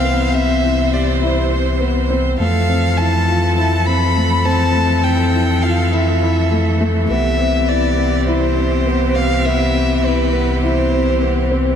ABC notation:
X:1
M:4/4
L:1/8
Q:1/4=102
K:C
V:1 name="Violin"
f e2 d c3 z | f2 a2 a b2 a- | a g2 f e3 z | e2 d2 c3 f |
e2 B2 c3 z |]
V:2 name="Grand piano"
B, C E G E C B, C | A, C E F E C A, C | A, C E F E E A, A, | B, C E B, E C B, C |
B, C E B, E C B, C |]
V:3 name="String quartet" clef=bass
[C,E,c]8 | [E,F,A]8- | [E,F,A]8 | [C,G]8- |
[C,G]8 |]
V:4 name="Sub bass" clef=bass
C,,8 | F,,8- | F,,8 | C,,8- |
C,,8 |]